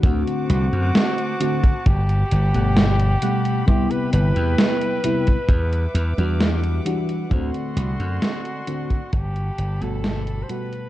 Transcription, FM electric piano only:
\new Staff \with { instrumentName = "FM electric piano" } { \time 4/4 \key g \major \tempo 4 = 66 <d a c' fis'>4. <d a c' fis'>16 r4 <b, g a fis''>8. <b, g a fis''>8 | <c g b e'>4. <c g b e'>16 r4 <e g d' fis'>8. <e g d' fis'>8 | <d a c' fis'>4. <d a c' fis'>16 r4 <b, g a fis'>8. <b, g a fis'>8 | }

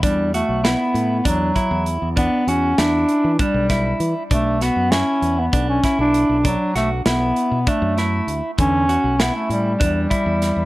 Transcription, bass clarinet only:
\new Staff \with { instrumentName = "Bass clarinet" } { \time 7/8 \key e \dorian \tempo 4 = 98 g8 a8 b4 fis4 r8 | b8 cis'8 d'4 g4 r8 | a8 b8 cis'8. b8 cis'8 d'8. | fis8 a8 b4 a4 r8 |
cis'4 b16 a16 g8 g4. | }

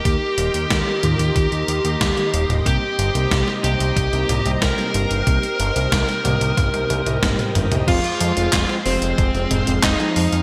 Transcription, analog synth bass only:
\new Staff \with { instrumentName = "Analog synth bass" } { \clef bass \time 4/4 \key f \minor \tempo 4 = 92 ees,16 r16 ees,,16 ees,16 ees,16 r16 ees,16 ees,16 ees,16 ees,16 ees,16 ees,16 ees,16 r16 ees,,16 ees,,16 | c,16 r16 g,,16 c,16 c,16 r16 c,16 c,16 c,16 c,16 c,16 c,16 c,16 r16 g,,16 g,,16 | c,16 r16 g,,16 c,16 c,16 r16 c,16 c,16 g,,16 c,16 c,16 c,16 g,,16 r16 g,,16 c,16 | f,,16 r16 f,16 f,,16 f,,16 r16 f,,16 f,,16 f,,16 f,,16 f,,16 f,,16 f,,16 r16 f,16 f,16 | }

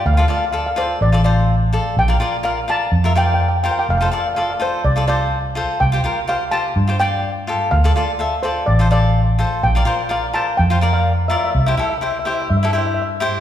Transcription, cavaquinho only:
\new Staff \with { instrumentName = "Cavaquinho" } { \time 4/4 \key d \minor \tempo 4 = 125 r16 <f' a' d''>16 <f' a' d''>16 r16 <f' a' d''>16 r16 <f' a' d''>8 r16 <f' a' d''>16 <f' a' c''>8 r8 <f' a' d''>8 | r16 <f' bes' d''>16 <f' bes' d''>16 r16 <f' bes' d''>16 r16 <f' bes' d''>8 r16 <f' bes' e''>16 <f' bes' d''>8 r8 <f' bes' c''>8 | r16 <f' a' c''>16 <f' a' d''>16 r16 <f' a' d''>16 r16 <f' a' c''>8 r16 <f' a' d''>16 <f' a' c''>8 r8 <f' a' c''>8 | r16 <f' g' c''>16 <f' g' bes'>16 r16 <f' g' c''>16 r16 <f' g' c''>8 r16 <f' g' c''>16 <f' g' d''>8 r8 <f' g' a'>8 |
r16 <f' a' d''>16 <f' a' d''>16 r16 <f' a' e''>16 r16 <f' a' d''>8 r16 <f' a' c''>16 <f' a' d''>8 r8 <f' a' c''>8 | r16 <f' bes' d''>16 <f' bes' c''>16 r16 <f' bes' d''>16 r16 <f' bes' c''>8 r16 <f' bes' c''>16 <f' bes' d''>8 r8 <f' bes' d''>8 | r16 <e' g' c''>16 <e' g' a'>16 r16 <e' g' c''>16 r16 <e' g' c''>8 r16 <e' g' a'>16 <e' g' c''>8 r8 <e' g' c''>8 | }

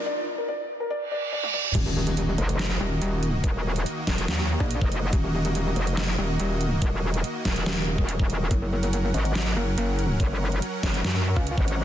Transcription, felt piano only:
\new Staff \with { instrumentName = "Felt piano" } { \time 4/4 \key ees \minor \tempo 4 = 142 d''8 r16 bes'16 d''8 r16 bes'16 d''8 d''8 d''8 d''8 | r1 | r1 | r1 |
r1 | r1 | r1 | }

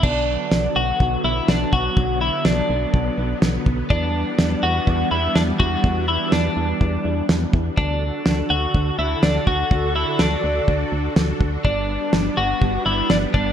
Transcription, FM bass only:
\new Staff \with { instrumentName = "FM bass" } { \clef bass \time 4/4 \key b \minor \tempo 4 = 124 b,,4 b,,8 b,,8 b,,8 b,,8 b,,8 b,,8 | b,,4 b,,8 b,,8 b,,8 b,,8 b,,8 b,,8 | e,4 e,8 e,8 e,8 e,8 e,8 e,8 | e,4 e,8 e,8 e,8 e,8 e,8 e,8 |
d,4 d,8 d,8 d,8 d,8 d,8 d,8 | d,4 d,8 d,8 d,8 d,8 d,8 d,8 | g,,4 g,,8 g,,8 g,,8 g,,8 g,,8 g,,8 | }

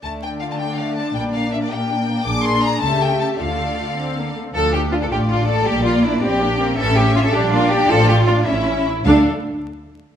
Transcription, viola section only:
\new Staff \with { instrumentName = "Viola section" } { \time 6/8 \key d \minor \tempo 4. = 107 << { d'2.~ | d'2. | d'4. g'4. | f'4. c'8 bes8 a16 c'16 |
f8 a8 d'8 f'8 d'8 a8 | g8 bes8 d'8 g'8 d'8 bes8 | e8 a8 cis'8 g8 bes8 d'8 | f8 a8 d'8 a8 cis'8 e'8 |
a'8 r2 r8 | } \\ { a2. | bes2. | bes4. a4. | a4. r4. |
d'2.~ | d'2. | cis'4. d'4.~ | d'4. cis'4 r8 |
d'8 r2 r8 | } >> }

